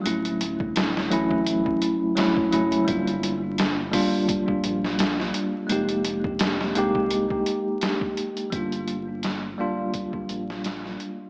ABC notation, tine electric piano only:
X:1
M:4/4
L:1/8
Q:"Swing 16ths" 1/4=85
K:Fdor
V:1 name="Tine electric piano"
[^F,=A,^C=E]3 [F,A,CE] z2 [F,A,CE] [F,A,CE] | [G,B,DF]3 [G,B,DF] z4 | [A,B,EG]3 [A,B,EG] z4 | [G,B,DF]3 [G,B,DF] z4 |]